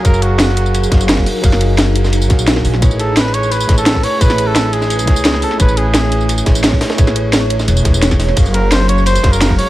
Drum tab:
RD |x-x-x-x-x-x-x---|x-x-x-x-x-x-x-xx|x-x-x-x-x-x-x---|x-x-x-x-x-x-x-xx|
HH |x-x-x-x-x-x-x-o-|x-x-x-x-x-x-x-o-|x-x-x-x-x-x-x-o-|x-x-x-x-x-x-x-o-|
TB |xx--x--xxx-xx---|xx--x--xxx-xx-x-|xx--x--xxx-xx---|xx--x--xxx-xx-x-|
SD |----oo----o-oo--|-o--o--o--o-oo-o|----oo----o-oo--|-o--o--o--o-oo-o|
BD |o---------o--o--|o---------o-----|o---------o--o--|o---------o-----|

RD |x-x-x-x-x-x-x-xx|x-x-x-x-x-x-x-x-|x-x-x-x-x-x-x---|
HH |x-x-x-x-x-x-x-o-|x-x-x-x-x-x-x-o-|x-x-x-x-x-x-x-o-|
TB |xx--x--xxx-xx---|xx--x--xxx-xxxx-|xx--x--xxx-xx---|
SD |----oo----o-oooo|-o--o--o--o-oooo|----oo----o-oo--|
BD |o---------o--o--|o---------o--o--|o---------o--o--|